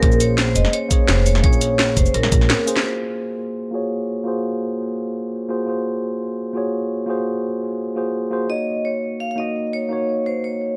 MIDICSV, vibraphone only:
0, 0, Header, 1, 2, 480
1, 0, Start_track
1, 0, Tempo, 352941
1, 35, Time_signature, 4, 2, 24, 8
1, 14642, End_track
2, 0, Start_track
2, 0, Title_t, "Vibraphone"
2, 0, Program_c, 0, 11
2, 0, Note_on_c, 0, 70, 96
2, 283, Note_on_c, 0, 73, 100
2, 295, Note_off_c, 0, 70, 0
2, 502, Note_off_c, 0, 73, 0
2, 516, Note_on_c, 0, 72, 102
2, 753, Note_on_c, 0, 75, 110
2, 763, Note_off_c, 0, 72, 0
2, 992, Note_on_c, 0, 73, 106
2, 1001, Note_off_c, 0, 75, 0
2, 1470, Note_on_c, 0, 72, 100
2, 1488, Note_off_c, 0, 73, 0
2, 1712, Note_on_c, 0, 73, 99
2, 1720, Note_off_c, 0, 72, 0
2, 1935, Note_off_c, 0, 73, 0
2, 1951, Note_on_c, 0, 73, 108
2, 2623, Note_off_c, 0, 73, 0
2, 2674, Note_on_c, 0, 72, 93
2, 2898, Note_off_c, 0, 72, 0
2, 2915, Note_on_c, 0, 70, 80
2, 3585, Note_off_c, 0, 70, 0
2, 11555, Note_on_c, 0, 75, 96
2, 12035, Note_on_c, 0, 73, 85
2, 12049, Note_off_c, 0, 75, 0
2, 12516, Note_on_c, 0, 77, 98
2, 12529, Note_off_c, 0, 73, 0
2, 12646, Note_off_c, 0, 77, 0
2, 12662, Note_on_c, 0, 77, 73
2, 12755, Note_off_c, 0, 77, 0
2, 12757, Note_on_c, 0, 75, 91
2, 13203, Note_off_c, 0, 75, 0
2, 13238, Note_on_c, 0, 73, 90
2, 13958, Note_on_c, 0, 72, 78
2, 13978, Note_off_c, 0, 73, 0
2, 14200, Note_on_c, 0, 73, 77
2, 14203, Note_off_c, 0, 72, 0
2, 14642, Note_off_c, 0, 73, 0
2, 14642, End_track
0, 0, End_of_file